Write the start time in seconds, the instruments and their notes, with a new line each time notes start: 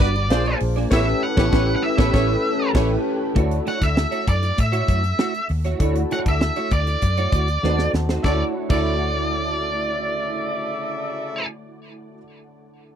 Already playing: grand piano F#3 G3 D4 E4 B4, lead electric guitar D5
0.00 fingered electric bass G1, clean electric guitar G3 D4 F#4 B4, kick, ride
0.15 clean electric guitar G3 D4 F#4 B4, ride
0.30 fingered electric bass A#1, grand piano A#3 D4 F4 G#4 C5, clean electric guitar A#3 D4 G#4 D5, horn section F4 G#4 C5, snare, ride
0.46 muted clean electric guitar stroke, ride
0.60 fingered electric bass A#1, muted clean electric guitar stroke, open hi-hat, ride
0.76 clean electric guitar A#3 D4 G#4 D5, snare, ride
0.90 fingered electric bass A1, grand piano A3 C#4 E4 G4 B4, clean electric guitar B3 E4 G4 C#5, horn section E4 G4 C#5, lead electric guitar E5, kick, snare, crash
1.23 lead electric guitar F#5
1.36 fingered electric bass A1, grand piano A3 C#4 E4 G4 B4, clean electric guitar B3 E4 G4 C#5, horn section E4 G4 C#5, kick, snare
1.51 fingered electric bass A1, grand piano A3 C#4 E4 G4 B4, clean electric guitar B3 E4 G4 C#5, horn section E4 G4 C#5, kick, snare
1.76 lead electric guitar F#5
1.83 lead electric guitar E5
1.97 fingered electric bass A1, grand piano A3 C#4 E4 G4 B4, clean electric guitar B3 E4 G4 C#5, horn section E4 G4 C#5, kick, snare
2.12 fingered electric bass A1, grand piano A3 C#4 E4 G4 B4, clean electric guitar B3 E4 G4 C#5, horn section E4 G4 C#5, kick, snare
2.73 fingered electric bass A1, grand piano A3 C#4 E4 G4 B4, clean electric guitar B3 E4 G4 E5, horn section E4 G4 C#5, kick, snare, crash
3.34 fingered electric bass D2, grand piano A3 D4 E4 F#4 D5, clean electric guitar A3 E4 F#4 C#5, kick, closed hi-hat
3.51 closed hi-hat
3.66 clean electric guitar A3 E4 F#4 C#5, lead electric guitar F#5, closed hi-hat
3.81 fingered electric bass D2, clean electric guitar A3 E4 F#4 D5, lead electric guitar E5, kick, snare, closed hi-hat
3.97 muted clean electric guitar stroke, snare
4.11 clean electric guitar A3 E4 F#4 C#5, closed hi-hat
4.26 fingered electric bass F#2, lead electric guitar D5, muted clean electric guitar stroke, kick, closed hi-hat
4.42 muted clean electric guitar stroke, closed hi-hat
4.57 fingered electric bass A2, lead electric guitar E5, muted clean electric guitar stroke, kick, closed hi-hat
4.72 clean electric guitar A3 E4 F#4 C#5, closed hi-hat
4.88 fingered electric bass F#2, clean electric guitar A3 E4 F#4 C#5, kick, closed hi-hat
5.04 muted clean electric guitar stroke, closed hi-hat
5.18 clean electric guitar A3 E4 F#4 C#5, snare
5.34 muted clean electric guitar stroke, closed hi-hat
5.49 fingered electric bass D#2, muted clean electric guitar stroke, open hi-hat
5.64 clean electric guitar A3 E4 F#4 C#5, snare, closed hi-hat
5.79 fingered electric bass D2, grand piano A3 D4 E4 F#4 D5, clean electric guitar A3 E4 F#4 C#5, kick, closed hi-hat
5.95 closed hi-hat
6.11 clean electric guitar A3 E4 F#4 C#5, lead electric guitar F#5, closed hi-hat
6.26 fingered electric bass D2, clean electric guitar A3 E4 F#4 D5, lead electric guitar E5, kick, closed hi-hat
6.41 muted clean electric guitar stroke, snare
6.56 clean electric guitar A3 E4 F#4 C#5, closed hi-hat
6.71 fingered electric bass D2, lead electric guitar D5, muted clean electric guitar stroke, kick, closed hi-hat
6.86 muted clean electric guitar stroke, closed hi-hat
7.01 fingered electric bass F#2, muted clean electric guitar stroke, kick, closed hi-hat
7.17 clean electric guitar A3 E4 F#4 C#5, closed hi-hat
7.32 fingered electric bass D2, clean electric guitar A3 E4 F#4 C#5, kick, closed hi-hat
7.48 muted clean electric guitar stroke, closed hi-hat
7.63 fingered electric bass D#2, grand piano A3 C4 D#4 F#4 B4, clean electric guitar A3 D#4 F#4 C5, snare
7.71 grand piano C5
7.79 muted clean electric guitar stroke, snare
7.94 fingered electric bass D#2, muted clean electric guitar stroke, snare
8.09 clean electric guitar A3 D#4 F#4 C5, snare
8.22 fingered electric bass D2, grand piano A3 D4 E4 F#4, clean electric guitar A3 E4 F#4, horn section C#4 A4 E5, lead electric guitar D5, kick, snare
8.27 grand piano C#5, clean electric guitar C#5
8.69 fingered electric bass D2, horn section C#3 A4 E5, grand piano D3 A3 E4 F#4, clean electric guitar A3 E4, lead electric guitar D5, kick, crash
8.73 clean electric guitar F#4 C#5, grand piano E5